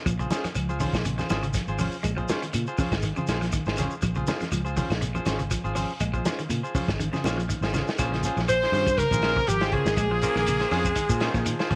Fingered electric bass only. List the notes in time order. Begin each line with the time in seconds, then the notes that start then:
0.06 A#1
0.45 muted fingered electric bass stroke
0.56 C#2
0.93 A#1
1.30 G#1
1.68 G#1
2.04 A#1
2.54 A#2
2.78 muted fingered electric bass stroke
2.91 G#1
3.28 A#1
3.66 G#1
4.03 A#1
4.41 muted fingered electric bass stroke
4.52 C#2
4.90 A#1
5.26 G#1
5.64 G#1
6.00 A#1
6.49 A#2
6.75 muted fingered electric bass stroke
6.88 G#1
7.24 A#1
7.61 G#1
7.99 A#1
8.37 A#1
8.72 G2
9.11 A#1
9.48 G#1
9.85 G#1
9.97 A#1
10.36 A#1
10.71 F2
11.09 A#2
11.34 A#2
11.71 A#1